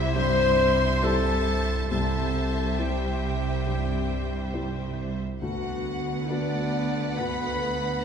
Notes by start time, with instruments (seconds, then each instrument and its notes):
Already playing: cello section C2, double bass section C2, felt piano C2 G3 E4 C5, viola section G3 C5, clarinet E4, violin section E5, flute section E5
0.15 felt piano G2, clarinet C5, violin section C6, flute section C6
1.03 felt piano G3 E4 C5, clarinet A4, violin section A5, flute section A5
1.90 cello section C2, felt piano C2, double bass section C2, viola section G3 C5, clarinet A4, violin section E5 A5, flute section A5
2.78 felt piano G3 E4 C5, clarinet G4, violin section G5, flute section G5
3.67 felt piano G2
4.54 felt piano G3 E4 C5
5.42 felt piano D2, double bass section D2, cello section D2, viola section B3 B4, clarinet F#4, violin section F#5, flute section F#5
6.29 felt piano B3 F#4 B4, clarinet D4, violin section D5, flute section D5
7.18 felt piano D2, clarinet B4, violin section B5, flute section B5